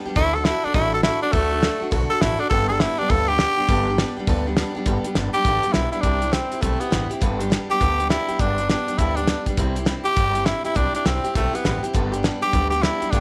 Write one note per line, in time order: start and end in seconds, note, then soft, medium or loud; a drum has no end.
0.05 0.16 G3 medium
0.05 0.17 B3 medium
0.05 0.17 D4 medium
0.05 0.16 G4 medium
0.05 muted upright bass stroke medium
0.16 0.50 D2 medium
0.16 0.35 D3 medium
0.16 0.35 A3 medium
0.16 0.35 D4 medium
0.16 0.36 E4 loud
0.16 0.36 F#4 medium
0.16 0.35 A4 medium
0.16 kick loud
0.16 open hi-hat medium
0.35 0.46 F#4 medium
0.35 0.46 A4 medium
0.39 0.46 D4 soft
0.45 0.64 A3 medium
0.45 0.65 D4 medium
0.45 0.66 E4 loud
0.45 0.64 F#4 medium
0.45 0.62 A4 medium
0.45 snare loud
0.45 open hi-hat soft
0.64 0.74 D4 loud
0.64 0.74 D4 soft
0.64 0.75 F#4 medium
0.64 0.75 A4 medium
0.64 muted upright bass stroke medium
0.74 1.08 A1 medium
0.74 0.93 D3 medium
0.74 0.93 A3 medium
0.74 0.93 D4 medium
0.74 0.93 E4 loud
0.74 0.93 F#4 medium
0.74 0.91 A4 medium
0.74 kick loud
0.74 open hi-hat medium
0.93 1.03 D4 soft
0.93 1.04 F#4 medium
0.93 1.04 A4 medium
0.93 1.03 A4 loud
1.03 1.22 A3 medium
1.03 1.23 D4 medium
1.03 1.22 E4 medium
1.03 1.22 F#4 medium
1.03 1.20 A4 medium
1.03 snare loud
1.03 open hi-hat soft
1.21 1.34 D4 loud
1.21 1.32 D4 medium
1.21 1.33 F#4 medium
1.21 1.33 A4 medium
1.21 muted upright bass stroke medium
1.32 1.67 D2 medium
1.32 1.51 D3 medium
1.32 1.90 A3 loud
1.32 1.52 A3 medium
1.32 1.52 D4 medium
1.32 1.50 F#4 medium
1.32 1.49 A4 medium
1.32 kick loud
1.32 open hi-hat medium
1.50 1.61 D4 soft
1.50 1.62 F#4 soft
1.50 1.62 A4 medium
1.61 1.81 A3 medium
1.61 1.81 D4 medium
1.61 1.81 F#4 medium
1.61 1.78 A4 medium
1.61 snare loud
1.61 open hi-hat medium
1.80 1.92 D4 medium
1.80 1.92 F#4 medium
1.80 1.92 A4 medium
1.80 muted upright bass stroke medium
1.91 2.08 B1 medium
1.91 2.10 D3 medium
1.91 2.11 A3 medium
1.91 2.11 D4 medium
1.91 2.11 F#4 medium
1.91 2.08 A4 loud
1.91 kick loud
1.91 open hi-hat medium
2.10 2.21 D4 soft
2.10 2.22 F#4 medium
2.10 2.21 A4 medium
2.10 2.23 A4 loud
2.21 2.37 A1 medium
2.21 2.40 A3 medium
2.21 2.41 D4 medium
2.21 2.41 E4 loud
2.21 2.39 F#4 medium
2.21 2.37 A4 medium
2.21 snare loud
2.21 open hi-hat medium
2.39 2.49 D4 medium
2.39 2.51 D4 soft
2.39 2.51 F#4 medium
2.39 2.50 A4 medium
2.39 muted upright bass stroke medium
2.50 2.84 G1 loud
2.50 2.69 G2 medium
2.50 2.69 D3 medium
2.50 2.70 G3 medium
2.50 2.70 B3 medium
2.50 2.69 D4 medium
2.50 2.67 G4 medium
2.50 2.68 A4 loud
2.50 kick loud
2.50 open hi-hat medium
2.68 2.79 G3 soft
2.68 2.80 B3 soft
2.68 2.81 D4 soft
2.68 2.80 G4 medium
2.68 2.82 A4 loud
2.80 2.99 G3 medium
2.80 2.99 B3 medium
2.80 2.99 D4 medium
2.80 3.00 E4 loud
2.80 2.97 G4 medium
2.80 snare loud
2.80 open hi-hat medium
2.98 3.09 G3 soft
2.98 3.10 B3 soft
2.98 3.12 D4 loud
2.98 3.10 D4 medium
2.98 3.10 G4 medium
2.98 muted upright bass stroke medium
3.10 3.43 D2 medium
3.10 3.28 G2 medium
3.10 3.28 D3 medium
3.10 3.28 G3 medium
3.10 3.29 B3 medium
3.10 3.28 D4 medium
3.10 3.27 G4 medium
3.10 3.30 A4 loud
3.10 kick loud
3.10 open hi-hat medium
3.28 3.39 G3 soft
3.28 3.39 B3 soft
3.28 3.40 D4 medium
3.28 3.39 G4 medium
3.28 4.14 G4 loud
3.39 3.58 G3 medium
3.39 3.58 B3 medium
3.39 3.57 D4 medium
3.39 snare loud
3.39 open hi-hat soft
3.43 3.56 G4 medium
3.57 3.68 G3 soft
3.57 3.69 B3 soft
3.57 3.69 D4 medium
3.57 3.68 G4 medium
3.57 muted upright bass stroke medium
3.68 4.02 G1 loud
3.68 3.87 G2 medium
3.68 3.87 D3 loud
3.68 3.87 G3 medium
3.68 3.88 B3 medium
3.68 3.87 D4 loud
3.68 3.86 G4 loud
3.68 kick loud
3.68 open hi-hat medium
3.87 3.97 G3 soft
3.87 3.98 B3 medium
3.87 3.98 D4 medium
3.87 3.98 G4 medium
3.98 4.16 G3 medium
3.98 4.17 B3 medium
3.98 4.17 D4 medium
3.98 4.15 G4 medium
3.98 snare loud
3.98 open hi-hat medium
4.16 4.27 G3 medium
4.16 4.28 B3 medium
4.16 4.28 D4 medium
4.16 4.27 G4 medium
4.16 muted upright bass stroke medium
4.27 4.61 D2 medium
4.27 4.46 G2 medium
4.27 4.46 D3 loud
4.27 4.46 G3 medium
4.27 4.47 B3 loud
4.27 4.46 D4 loud
4.27 4.45 G4 loud
4.27 kick loud
4.27 open hi-hat medium
4.46 4.56 G3 medium
4.46 4.57 B3 medium
4.46 4.57 D4 medium
4.46 4.57 G4 medium
4.57 4.75 G3 medium
4.57 4.76 B3 medium
4.57 4.75 D4 medium
4.57 4.73 G4 medium
4.57 snare loud
4.57 open hi-hat medium
4.75 4.86 G3 soft
4.75 4.86 B3 medium
4.75 4.87 D4 medium
4.75 4.86 G4 medium
4.75 muted upright bass stroke medium
4.86 4.99 G1 medium
4.86 5.04 G2 medium
4.86 5.05 D3 medium
4.86 5.05 G3 medium
4.86 5.05 B3 medium
4.86 5.04 D4 medium
4.86 5.03 G4 loud
4.86 kick loud
4.86 closed hi-hat medium
5.04 5.14 G3 soft
5.04 5.15 B3 medium
5.04 5.16 D4 medium
5.04 5.15 G4 medium
5.04 closed hi-hat medium
5.15 5.31 G1 medium
5.15 5.34 G3 medium
5.15 5.34 B3 medium
5.15 5.34 D4 medium
5.15 snare loud
5.15 closed hi-hat medium
5.19 5.33 G4 medium
5.33 5.46 B3 soft
5.33 5.46 D4 medium
5.33 5.74 G4 loud
5.33 5.45 G4 medium
5.33 closed hi-hat medium
5.38 5.46 G3 soft
5.45 5.61 A1 medium
5.45 5.64 G2 medium
5.45 5.64 D3 medium
5.45 5.64 G3 medium
5.45 5.64 B3 medium
5.45 5.64 D4 medium
5.45 5.62 G4 medium
5.45 kick loud
5.45 closed hi-hat medium
5.63 5.73 G3 soft
5.63 5.74 B3 soft
5.63 5.75 D4 soft
5.63 5.74 G4 medium
5.63 muted upright bass stroke medium
5.63 closed hi-hat medium
5.72 5.90 B1 medium
5.72 5.93 G3 medium
5.72 5.93 B3 medium
5.72 5.91 E4 loud
5.72 snare loud
5.72 closed hi-hat medium
5.76 5.92 D4 medium
5.76 5.91 G4 medium
5.92 6.02 G3 soft
5.92 6.04 B3 soft
5.92 6.04 D4 medium
5.92 6.03 E4 medium
5.92 6.03 G4 soft
5.92 closed hi-hat medium
6.01 6.37 C2 medium
6.01 6.22 C3 medium
6.01 6.22 G3 medium
6.01 6.22 C4 medium
6.01 6.34 D4 loud
6.01 6.21 E4 medium
6.01 kick loud
6.01 closed hi-hat medium
6.05 6.20 G4 medium
6.21 6.32 C4 soft
6.21 6.33 E4 soft
6.21 6.32 G4 medium
6.21 closed hi-hat medium
6.32 6.51 G3 medium
6.32 6.63 C4 medium
6.32 6.51 C4 medium
6.32 6.52 E4 medium
6.32 6.50 G4 medium
6.32 snare loud
6.32 closed hi-hat medium
6.51 6.61 C4 soft
6.51 6.61 E4 soft
6.51 6.62 G4 soft
6.51 muted upright bass stroke medium
6.51 closed hi-hat medium
6.61 6.78 B1 medium
6.61 6.80 C3 medium
6.61 6.81 G3 medium
6.61 6.82 A3 medium
6.61 6.81 C4 medium
6.61 6.80 E4 medium
6.61 6.79 G4 medium
6.61 kick loud
6.61 closed hi-hat medium
6.80 7.10 B3 medium
6.80 6.90 C4 soft
6.80 6.91 E4 soft
6.80 6.91 G4 medium
6.80 closed hi-hat medium
6.90 7.08 A1 medium
6.90 7.10 G3 medium
6.90 7.10 C4 medium
6.90 7.10 E4 medium
6.90 7.08 G4 medium
6.90 snare loud
6.90 closed hi-hat medium
7.10 7.22 C4 soft
7.10 7.22 E4 soft
7.10 7.21 G4 medium
7.10 muted upright bass stroke medium
7.10 closed hi-hat medium
7.21 7.56 G1 medium
7.21 7.40 G2 medium
7.21 7.40 D3 medium
7.21 7.40 G3 medium
7.21 7.40 B3 loud
7.21 7.40 D4 medium
7.21 7.38 G4 loud
7.21 kick loud
7.21 closed hi-hat medium
7.40 7.49 G3 soft
7.40 7.50 B3 medium
7.40 7.51 D4 medium
7.40 7.51 G4 medium
7.40 closed hi-hat medium
7.50 7.69 G3 medium
7.50 7.70 B3 medium
7.50 7.70 D4 medium
7.50 7.68 G4 medium
7.50 snare loud
7.50 closed hi-hat medium
7.69 7.80 G3 soft
7.69 7.81 B3 soft
7.69 7.81 D4 medium
7.69 7.80 G4 medium
7.69 8.08 G4 loud
7.69 muted upright bass stroke medium
7.69 closed hi-hat medium
7.80 8.14 D2 medium
7.80 7.99 G2 medium
7.80 7.99 D3 medium
7.80 7.99 G3 medium
7.80 8.00 B3 medium
7.80 7.98 D4 medium
7.80 7.98 G4 medium
7.80 kick loud
7.80 closed hi-hat medium
7.99 8.08 G3 soft
7.99 8.10 B3 soft
7.99 8.10 D4 soft
7.99 8.10 G4 medium
7.99 closed hi-hat medium
8.09 8.28 G3 medium
8.09 8.29 B3 medium
8.09 8.29 D4 medium
8.09 8.42 E4 loud
8.09 8.27 G4 medium
8.09 snare loud
8.09 closed hi-hat medium
8.28 8.40 G3 soft
8.28 8.39 B3 soft
8.28 8.40 D4 medium
8.28 8.39 G4 medium
8.28 muted upright bass stroke medium
8.28 closed hi-hat medium
8.39 8.73 G1 medium
8.39 8.58 G2 medium
8.39 8.58 D3 medium
8.39 8.59 G3 medium
8.39 8.59 B3 medium
8.39 8.70 D4 loud
8.39 8.58 D4 medium
8.39 8.57 G4 medium
8.39 kick loud
8.39 closed hi-hat medium
8.58 8.68 G3 soft
8.58 8.69 B3 soft
8.58 8.70 D4 medium
8.58 8.69 G4 medium
8.58 closed hi-hat medium
8.69 8.88 G3 medium
8.69 8.88 B3 medium
8.69 8.99 D4 medium
8.69 8.87 D4 medium
8.69 8.86 G4 medium
8.69 snare loud
8.69 closed hi-hat medium
8.87 8.98 G3 soft
8.87 8.98 B3 soft
8.87 8.98 D4 soft
8.87 8.99 G4 medium
8.87 muted upright bass stroke medium
8.87 closed hi-hat medium
8.98 9.32 D2 medium
8.98 9.17 G2 medium
8.98 9.17 D3 medium
8.98 9.18 G3 medium
8.98 9.18 B3 medium
8.98 9.17 D4 medium
8.98 9.17 E4 medium
8.98 9.16 G4 medium
8.98 kick loud
8.98 closed hi-hat medium
9.16 9.26 G3 soft
9.16 9.27 B3 soft
9.16 9.46 D4 medium
9.16 9.28 D4 soft
9.16 9.28 G4 medium
9.16 closed hi-hat medium
9.27 9.46 G3 medium
9.27 9.47 B3 medium
9.27 9.46 D4 medium
9.27 9.45 G4 medium
9.27 snare loud
9.27 closed hi-hat medium
9.46 9.57 G3 soft
9.46 9.59 B3 medium
9.46 9.58 D4 soft
9.46 9.58 G4 medium
9.46 kick medium
9.46 closed hi-hat medium
9.57 9.92 C2 medium
9.57 9.76 C3 medium
9.57 9.77 G3 medium
9.57 9.77 C4 medium
9.57 9.76 E4 medium
9.57 9.74 G4 medium
9.57 kick loud
9.57 closed hi-hat medium
9.75 9.85 C4 medium
9.75 9.87 E4 medium
9.75 9.87 G4 medium
9.75 closed hi-hat medium
9.85 10.05 G3 medium
9.85 10.06 C4 medium
9.85 10.04 E4 medium
9.85 10.03 G4 medium
9.85 snare loud
9.85 closed hi-hat medium
10.04 10.16 C4 soft
10.04 10.16 E4 soft
10.04 10.16 G4 medium
10.04 10.47 G4 loud
10.04 muted upright bass stroke medium
10.04 closed hi-hat medium
10.16 10.51 G1 medium
10.16 10.35 C3 medium
10.16 10.35 G3 medium
10.16 10.36 C4 medium
10.16 10.35 E4 medium
10.16 10.33 G4 medium
10.16 kick loud
10.16 closed hi-hat medium
10.34 10.46 C4 soft
10.34 10.46 E4 soft
10.34 10.46 G4 soft
10.34 closed hi-hat medium
10.45 10.65 G3 medium
10.45 10.65 C4 medium
10.45 10.64 E4 loud
10.45 10.64 E4 medium
10.45 10.63 G4 medium
10.45 snare loud
10.45 closed hi-hat medium
10.64 10.74 C4 soft
10.64 10.78 E4 medium
10.64 10.75 E4 soft
10.64 10.75 G4 medium
10.64 muted upright bass stroke medium
10.64 closed hi-hat medium
10.75 10.89 C2 medium
10.75 10.94 C3 medium
10.75 10.94 G3 medium
10.75 10.94 C4 medium
10.75 10.95 D4 loud
10.75 10.95 E4 medium
10.75 10.93 G4 medium
10.75 kick loud
10.75 closed hi-hat medium
10.94 11.06 C4 soft
10.94 11.08 D4 medium
10.94 11.07 E4 soft
10.94 11.06 G4 medium
10.94 muted upright bass stroke medium
10.94 closed hi-hat medium
11.05 11.21 C2 medium
11.05 11.24 G3 medium
11.05 11.35 C4 medium
11.05 11.25 C4 medium
11.05 11.24 E4 medium
11.05 11.23 G4 medium
11.05 snare loud
11.05 closed hi-hat medium
11.24 11.36 C4 soft
11.24 11.36 E4 soft
11.24 11.35 G4 medium
11.24 closed hi-hat medium
11.35 11.51 B1 medium
11.35 11.54 C3 medium
11.35 11.54 G3 medium
11.35 11.56 A3 medium
11.35 11.55 C4 medium
11.35 11.54 E4 medium
11.35 11.52 G4 medium
11.35 kick loud
11.35 closed hi-hat medium
11.53 11.84 B3 medium
11.53 11.65 C4 soft
11.53 11.65 E4 medium
11.53 11.65 G4 medium
11.53 closed hi-hat medium
11.64 11.80 A1 medium
11.64 11.83 G3 medium
11.64 11.84 C4 medium
11.64 11.84 E4 medium
11.64 11.82 G4 medium
11.64 snare loud
11.64 closed hi-hat medium
11.83 11.94 C4 soft
11.83 11.95 E4 soft
11.83 11.94 G4 medium
11.83 muted upright bass stroke medium
11.83 closed hi-hat medium
11.93 12.28 G1 medium
11.93 12.13 G2 medium
11.93 12.13 D3 medium
11.93 12.13 G3 medium
11.93 12.13 B3 loud
11.93 12.13 D4 loud
11.93 12.11 G4 medium
11.93 kick loud
11.93 closed hi-hat medium
12.12 12.22 G3 soft
12.12 12.23 B3 medium
12.12 12.24 D4 medium
12.12 12.24 G4 medium
12.12 closed hi-hat medium
12.23 12.42 G3 medium
12.23 12.43 B3 medium
12.23 12.41 D4 medium
12.23 12.40 G4 medium
12.23 snare loud
12.23 closed hi-hat medium
12.41 12.52 G3 soft
12.41 12.53 B3 soft
12.41 12.54 D4 medium
12.41 12.53 G4 medium
12.41 12.69 G4 loud
12.41 muted upright bass stroke medium
12.41 closed hi-hat medium
12.53 12.87 D2 medium
12.53 12.72 G2 medium
12.53 12.72 D3 medium
12.53 12.72 G3 medium
12.53 12.72 B3 medium
12.53 12.71 D4 medium
12.53 12.70 G4 medium
12.53 kick loud
12.53 closed hi-hat medium
12.70 12.82 B3 soft
12.70 12.83 D4 soft
12.70 12.84 G4 loud
12.70 12.83 G4 medium
12.70 closed hi-hat medium
12.74 12.81 G3 soft
12.82 13.01 G3 medium
12.82 13.01 B3 medium
12.82 13.00 D4 medium
12.82 13.12 E4 loud
12.82 12.99 G4 medium
12.82 snare loud
12.82 closed hi-hat medium
13.00 13.12 G3 soft
13.00 13.12 B3 medium
13.00 13.13 D4 medium
13.00 13.12 G4 medium
13.00 muted upright bass stroke medium
13.00 closed hi-hat medium
13.11 13.20 G1 loud
13.11 13.20 G2 medium
13.11 13.20 D3 medium
13.11 13.20 G3 medium
13.11 13.20 B3 medium
13.11 13.20 D4 loud
13.11 13.20 D4 medium
13.11 13.20 G4 medium
13.11 kick loud
13.11 closed hi-hat medium